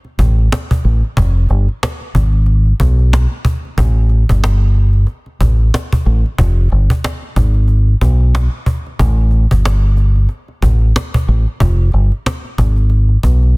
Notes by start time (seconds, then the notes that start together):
0.04 cajon slap
0.19 A1, cajon bass
0.38 cajon slap
0.52 cajon slap
0.71 cajon bass
0.84 A1, cajon slap
1.04 cajon slap
1.17 F1, cajon bass
1.49 G1, cajon slap
1.68 cajon slap
1.83 cajon slap
2.01 cajon slap
2.15 G#1, cajon bass
2.33 cajon slap
2.46 cajon slap
2.65 cajon slap
2.80 B1, cajon bass
2.99 cajon slap
3.13 cajon slap
3.31 cajon slap
3.45 cajon bass
3.65 cajon slap
3.78 A1, cajon bass
4.10 cajon slap
4.29 G1, cajon bass
4.44 cajon slap
4.61 cajon slap
4.75 cajon slap
4.93 cajon slap
5.07 cajon slap
5.26 cajon slap
5.41 A1, cajon bass
5.60 cajon slap
5.74 cajon slap
5.93 cajon bass
6.05 A1, cajon slap
6.26 cajon slap
6.38 F1, cajon bass
6.57 cajon slap
6.70 G1, cajon slap
6.90 cajon bass
7.04 cajon slap
7.22 cajon slap
7.36 G#1, cajon bass
7.54 cajon slap
7.68 cajon slap
7.87 cajon slap
8.01 B1, cajon bass
8.21 cajon slap
8.35 cajon slap
8.53 cajon slap
8.66 cajon bass
8.86 cajon slap
8.99 A1, cajon bass
9.31 cajon slap
9.51 G1, cajon bass
9.65 cajon slap
9.83 cajon slap
9.97 cajon slap
10.15 cajon slap
10.29 cajon slap
10.48 cajon slap
10.62 A1, cajon bass
10.82 cajon slap
10.96 cajon slap
11.14 cajon bass
11.27 A1, cajon slap
11.47 cajon slap
11.60 F1, cajon bass
11.92 G1, cajon slap
12.12 cajon slap
12.26 cajon slap
12.44 cajon slap
12.58 G#1, cajon bass
12.76 cajon slap
12.90 cajon slap
13.09 cajon slap
13.23 B1, cajon bass
13.43 cajon slap